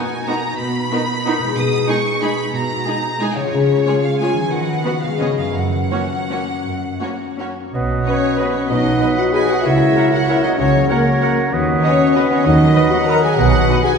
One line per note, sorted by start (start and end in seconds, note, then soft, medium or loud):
0.00 1.38 B2 soft
0.00 1.51 A#3 soft
0.00 1.47 D#4 soft
0.00 1.55 F#4 soft
0.00 0.26 G#5 medium
0.27 0.36 B3 soft
0.27 0.36 D#4 soft
0.27 0.36 F#4 soft
0.27 0.35 A#4 soft
0.27 0.59 A#5 medium
0.58 0.85 B2 medium
0.58 1.54 B5 medium
0.91 0.99 B3 soft
0.91 1.00 D#4 soft
0.91 1.01 F#4 soft
0.91 1.01 A#4 soft
1.26 1.34 B3 soft
1.26 1.34 D#4 soft
1.26 1.35 F#4 soft
1.26 1.35 A#4 soft
1.39 3.46 B2 soft
1.44 3.39 G#3 soft
1.48 3.51 D#4 soft
1.52 1.82 B2 medium
1.52 3.48 G#4 soft
1.57 1.88 D#6 medium
1.88 1.96 G#3 soft
1.88 1.96 D#4 soft
1.88 1.97 G#4 soft
1.88 2.22 C#6 medium
2.21 2.30 G#3 soft
2.21 2.29 D#4 soft
2.21 2.30 G#4 soft
2.21 2.54 B5 medium
2.52 2.80 B2 medium
2.52 3.20 A#5 medium
2.86 2.94 G#3 soft
2.86 2.95 D#4 soft
2.86 2.95 G#4 soft
3.20 3.28 G#3 soft
3.20 3.28 D#4 soft
3.20 3.30 G#4 soft
3.20 3.37 G#5 medium
3.36 4.44 C#3 soft
3.36 4.03 C#5 medium
3.40 4.46 G#3 soft
3.45 4.49 F4 soft
3.49 3.80 C#3 medium
3.49 4.51 G#4 soft
3.86 3.94 G#3 soft
3.86 3.94 F4 soft
3.86 3.95 G#4 soft
3.86 3.95 C#5 soft
4.02 4.19 F5 medium
4.20 4.28 G#3 soft
4.20 4.28 F4 soft
4.20 4.30 G#4 soft
4.20 4.30 C#5 soft
4.20 4.51 G#5 medium
4.33 5.13 D#3 soft
4.38 5.15 F#3 soft
4.42 5.17 F#4 soft
4.47 4.78 D#3 medium
4.47 5.16 B4 soft
4.51 5.02 F#5 medium
4.85 4.93 B3 soft
4.85 4.93 F#4 soft
4.85 4.94 F#4 soft
4.85 4.94 B4 soft
5.02 5.48 C#3 soft
5.02 5.20 F5 medium
5.08 5.50 G#3 soft
5.12 5.46 C#4 soft
5.17 5.49 C#3 soft
5.17 5.28 B3 soft
5.17 5.28 C#4 soft
5.17 5.55 B4 soft
5.17 5.29 C#5 soft
5.17 5.38 D#5 medium
5.21 5.29 G#4 soft
5.37 7.67 F#2 soft
5.37 5.55 F5 medium
5.43 8.85 F#3 soft
5.47 7.71 C#4 soft
5.52 5.86 F#2 soft
5.52 7.74 A#4 soft
5.52 7.39 F#5 medium
5.92 6.00 A#3 soft
5.92 6.00 C#4 soft
5.92 6.00 F#4 soft
5.92 6.00 C#5 soft
6.30 6.38 A#3 soft
6.30 6.38 C#4 soft
6.30 6.38 F#4 soft
6.30 6.39 C#5 soft
6.65 6.95 F#2 soft
7.01 7.09 A#3 soft
7.01 7.09 C#4 soft
7.01 7.09 F#4 soft
7.01 7.10 C#5 soft
7.39 7.47 A#3 soft
7.39 7.47 C#4 soft
7.39 7.48 F#4 soft
7.39 7.48 C#5 soft
7.74 8.01 B1 soft
7.74 8.00 B2 soft
7.74 8.70 B2 soft
7.74 8.35 F#3 soft
7.74 8.35 B4 soft
7.74 8.35 D#5 soft
7.74 8.35 F#5 soft
7.90 8.22 B3 soft
8.06 8.37 C#4 medium
8.06 8.39 F#4 soft
8.06 8.15 B4 soft
8.06 8.37 C#5 medium
8.06 8.14 D#5 soft
8.23 8.54 B3 soft
8.38 8.69 F#3 soft
8.38 8.55 B3 soft
8.38 9.01 F#4 soft
8.38 8.55 B4 soft
8.38 8.69 B4 soft
8.38 8.47 B4 soft
8.38 8.69 D#5 soft
8.38 8.48 D#5 soft
8.38 8.70 F#5 soft
8.54 9.17 B3 soft
8.54 8.70 C#4 medium
8.54 8.70 C#5 soft
8.69 8.96 B1 soft
8.69 8.96 B2 soft
8.69 9.67 B2 soft
8.69 9.63 F#3 soft
8.69 9.17 D#4 medium
8.69 9.66 B4 soft
8.69 9.17 D#5 medium
8.69 9.64 D#5 soft
8.69 9.64 F#5 soft
8.86 10.74 F#3 soft
9.01 9.34 F#4 soft
9.01 9.09 B4 soft
9.01 9.10 D#5 soft
9.17 9.50 B3 soft
9.17 9.35 F#4 medium
9.17 9.24 F#5 medium
9.33 9.95 F#4 soft
9.33 9.50 G#4 medium
9.33 9.42 B4 soft
9.33 9.42 D#5 soft
9.33 9.50 G#5 medium
9.49 9.67 B3 soft
9.49 9.65 F#4 medium
9.49 9.66 F#5 medium
9.64 9.91 C#2 soft
9.64 10.58 C#3 soft
9.64 9.91 C#3 soft
9.64 10.27 F#3 soft
9.64 10.12 E4 medium
9.64 10.28 A#4 soft
9.64 10.27 C#5 soft
9.64 10.12 E5 medium
9.64 10.27 F#5 soft
9.80 10.11 A#3 soft
9.96 10.05 A#4 soft
9.96 10.04 F#5 soft
9.96 10.05 F#5 soft
10.12 10.43 A#3 soft
10.12 10.28 F#4 medium
10.12 10.28 F#5 medium
10.28 10.59 F#3 soft
10.28 10.44 E4 medium
10.28 10.89 F#4 soft
10.28 10.59 A#4 soft
10.28 10.37 A#4 soft
10.28 10.59 C#5 soft
10.28 10.44 E5 medium
10.28 10.37 F#5 soft
10.28 10.58 F#5 soft
10.28 10.38 F#5 soft
10.44 11.05 A#3 soft
10.44 10.59 D#4 medium
10.44 10.50 D#5 medium
10.58 10.85 C#2 medium
10.58 10.84 C#3 medium
10.58 11.53 C#3 soft
10.58 10.89 F#3 soft
10.58 10.90 C#4 medium
10.58 10.89 A#4 soft
10.58 10.89 C#5 medium
10.58 10.89 C#5 soft
10.58 10.89 F#5 soft
10.75 12.60 F#3 soft
10.89 11.51 F#3 soft
10.89 11.37 A#3 medium
10.89 11.21 F#4 soft
10.89 11.36 A#4 soft
10.89 10.98 A#4 soft
10.89 11.51 A#4 soft
10.89 11.55 C#5 soft
10.89 10.98 F#5 soft
10.89 11.51 F#5 soft
10.89 10.98 F#5 soft
11.07 11.37 A#3 soft
11.22 11.82 F#4 soft
11.22 11.30 A#4 soft
11.22 11.30 F#5 soft
11.38 11.53 A#3 soft
11.52 11.78 D#2 medium
11.52 11.77 D#3 medium
11.52 12.45 D#3 medium
11.52 12.14 F#3 soft
11.52 12.15 B4 medium
11.52 12.16 D#5 medium
11.52 12.15 F#5 soft
11.67 11.99 B3 soft
11.82 12.13 C#4 medium
11.82 12.15 F#4 soft
11.82 11.92 B4 soft
11.82 12.13 C#5 medium
11.82 11.91 D#5 soft
11.82 11.92 F#5 soft
12.00 12.31 B3 soft
12.15 12.45 F#3 medium
12.15 12.31 B3 medium
12.15 12.76 F#4 soft
12.15 12.23 B4 soft
12.15 12.45 B4 medium
12.15 12.31 B4 medium
12.15 12.24 D#5 soft
12.15 12.46 D#5 medium
12.15 12.24 F#5 soft
12.15 12.45 F#5 soft
12.31 12.92 B3 soft
12.31 12.46 C#4 medium
12.31 12.46 C#5 medium
12.45 12.71 D#2 medium
12.45 12.70 D#3 medium
12.45 13.40 D#3 medium
12.45 13.37 F#3 medium
12.45 12.91 D#4 medium
12.45 13.36 B4 medium
12.45 12.92 D#5 medium
12.45 13.36 D#5 medium
12.45 13.37 F#5 medium
12.62 13.53 F#3 soft
12.75 13.08 F#4 soft
12.75 12.83 B4 soft
12.75 12.84 D#5 soft
12.75 12.85 F#5 medium
12.90 13.23 B3 soft
12.90 12.98 F#4 medium
12.90 13.08 F#5 medium
13.06 13.84 F#4 soft
13.06 13.22 A#4 medium
13.06 13.16 B4 medium
13.06 13.16 D#5 soft
13.06 13.17 F#5 soft
13.06 13.23 A#5 medium
13.22 13.98 B3 soft
13.22 13.37 G#4 medium
13.22 13.37 G#5 medium
13.36 13.64 B1 medium
13.36 13.63 B2 medium
13.36 13.98 B2 medium
13.36 13.79 F#3 medium
13.36 13.85 F#4 medium
13.36 13.78 B4 medium
13.36 13.78 D#5 medium
13.36 13.84 F#5 medium
13.36 13.78 F#5 medium
13.54 13.98 F#3 soft
13.69 13.98 D#4 soft
13.69 13.78 B4 soft
13.69 13.78 D#5 soft
13.69 13.77 F#5 medium
13.83 13.98 F#4 soft
13.83 13.91 G#4 medium
13.83 13.98 G#5 medium